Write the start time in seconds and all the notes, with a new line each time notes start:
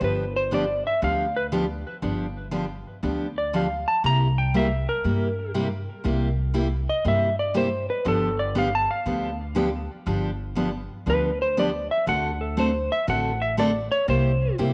0.01 G1 D3 F3 B3 D4 G4 B4
0.36 C5
0.51 D3 F3 B3 D4 G4 D5
0.87 E5
1.02 D2 D3 F3 B3 D4 G4 F5
1.36 B4
1.52 D3 F3 B3 D4 G4
2.02 G1 D3 F3 B3 D4 G4
2.51 D3 F3 B3 D4 G4
3.03 D2 D3 F3 B3 D4 G4
3.38 D5
3.53 D3 F3 B3 D4 G4 F5
3.88 A5
4.04 C2 C3 G3 A#3 E4 G4 A#5
4.38 G5
4.54 C3 G3 A#3 E4 G4 E5
4.89 A#4
5.04 G2 C3 G3 A#3 E4 G4
5.54 C3 G3 A#3 E4 G4
6.04 C2 C3 G3 A#3 E4 G4
6.54 C3 G3 A#3 E4 G4
6.89 D#5
7.05 G2 C3 G3 A#3 E4 G4 E5
7.39 D5
7.54 C3 G3 A#3 E4 G4 C5
7.90 B4
8.05 G1 D3 F3 B3 D4 G4 A4
8.39 D5
8.55 D3 F3 B3 D4 G4 F5
8.75 A5
8.91 F5
9.06 D2 D3 F3 B3 D4 G4
9.55 D3 F3 B3 D4 G4
10.06 G1 D3 F3 B3 D4 G4
10.55 D3 F3 B3 D4 G4
11.06 D2 D3 F3 B3 D4 G4 B4
11.42 C5
11.57 D3 F3 B3 D4 G4 D5
11.91 E5
12.06 D2 D3 A3 C4 F#4 A4 F#5
12.41 A4
12.57 D3 A3 C4 F#4 A4 C5
12.92 E5
13.07 A1 D3 A3 C4 F#4 A4 F#5
13.42 E5
13.57 D3 A3 C4 F#4 A4 D5
13.92 C#5
14.08 C2 C3 G3 A#3 E4 G4 C5
14.58 C2 C3 G3 A#3 E4 G4